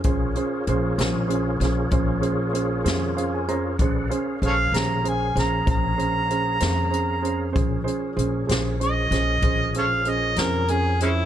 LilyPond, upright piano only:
\new Staff \with { instrumentName = "Upright piano" } { \time 12/8 \key bes \minor \tempo 4. = 64 << { r1 r4 f''16 aes''16 bes''8 | r1. | r1. | } \\ { <des' aes' c''>8 <des' aes' c''>8 <des' aes' c''>8 <des' aes' c''>8 <des' aes' c''>8 <des' aes' c''>8 <des' aes' c''>8 <des' aes' c''>8 <des' aes' c''>8 <des' aes' c''>8 <des' aes' c''>8 <des' aes' c''>8 | <des' aes' c''>8 <des' aes' c''>8 <des' aes' c''>8 <des' aes' c''>8 <des' aes' c''>8 <des' aes' c''>8 <des' aes' c''>8 <des' aes' c''>8 <des' aes' c''>8 <des' aes' c''>8 <des' aes' c''>8 <des' aes' c''>8 | <des' aes' c''>8 <des' aes' c''>8 <des' aes' c''>8 <des' aes' c''>8 <des' aes' c''>8 <des' aes' c''>8 <des' aes' c''>8 <des' aes' c''>8 <des' aes' c''>8 <des' aes' c''>8 <des' aes' bes'>8 <des' aes' c''>8 | } >> }